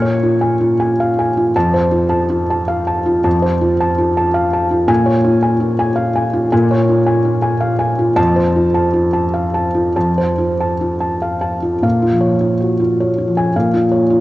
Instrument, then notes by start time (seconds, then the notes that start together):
felt piano
Already playing: A#2 G#5 F6 G#6 C#7
0.02 C#5
0.23 F4
0.41 G#5
0.61 F4
0.80 G#5
1.00 F5
1.19 G#5
1.37 F4
1.56 F2 A5
1.74 C5
1.91 F4
2.09 A5
2.30 F4
2.50 A5
2.68 F5
2.87 A5
3.06 F4
3.24 F2 A5
3.42 C5
3.61 F4
3.80 A5
3.98 F4
4.17 A5
4.34 F5
4.53 A5
4.71 F4
4.88 A#2 G#5
5.06 C#5
5.24 F4
5.42 G#5
5.60 F4
5.79 G#5
5.96 F5
6.16 G#5
6.33 F4
6.52 A#2 G#5
6.71 C#5
6.89 F4
7.06 G#5
7.25 F4
7.42 G#5
7.61 F5
7.79 G#5
7.99 F4
8.16 F2 A5
8.36 C5
8.56 F4
8.74 A5
8.93 F4
9.13 A5
9.34 F5
9.54 A5
9.75 F4
9.96 F2 A5
10.18 C5
10.38 F4
10.60 A5
10.81 F4
11.00 A5
11.22 F5
11.41 A5
11.62 F4
11.82 A#2 F5
12.02 F4
12.12 F3
12.21 C#5
12.41 F4
12.61 F#4
12.80 F4
13.00 C#5
13.18 F4
13.28 F3
13.37 G#5
13.56 A#2 F5
13.74 F4
13.91 C#5
14.10 F4